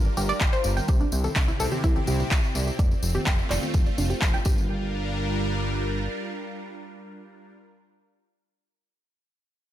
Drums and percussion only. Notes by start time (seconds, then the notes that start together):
0.05 tambourine
0.17 tambourine
0.29 tambourine
0.41 kick, clap, tambourine
0.53 tambourine
0.64 tambourine
0.77 tambourine, high conga
0.88 kick, tambourine
1.01 tambourine
1.12 tambourine
1.24 tambourine, high conga
1.36 kick, clap, tambourine
1.48 tambourine
1.60 tambourine, low conga
1.72 tambourine, high conga
1.84 kick, tambourine
1.96 tambourine, high conga
2.07 tambourine
2.20 tambourine, low conga
2.31 kick, clap, tambourine
2.44 tambourine
2.55 tambourine, low conga
2.67 tambourine
2.79 kick, tambourine
2.91 tambourine
3.03 tambourine
3.15 tambourine, high conga
3.26 kick, clap, tambourine
3.38 tambourine
3.50 clap, tambourine, high conga, low conga
3.62 tambourine, high conga
3.74 kick, tambourine
3.86 tambourine
3.98 tambourine
4.10 tambourine
4.22 kick, clap, tambourine
4.34 tambourine, low conga
4.45 kick, tambourine
4.58 tambourine, high conga